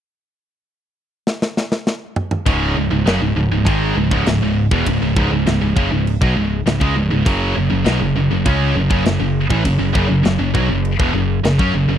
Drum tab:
CC |----------------|x---x---x---x---|x---x---x---x---|x---x---x---x---|
SD |--------ooooo---|----o-------o---|----o-------o---|----o-------o---|
T2 |--------------oo|----------------|----------------|----------------|
BD |----------------|o-------o--o---o|o-o---o--o---o--|o-------o--o---o|

CC |x---x---x---x---|
SD |----o-------o---|
T2 |----------------|
BD |o-o---o--o---o--|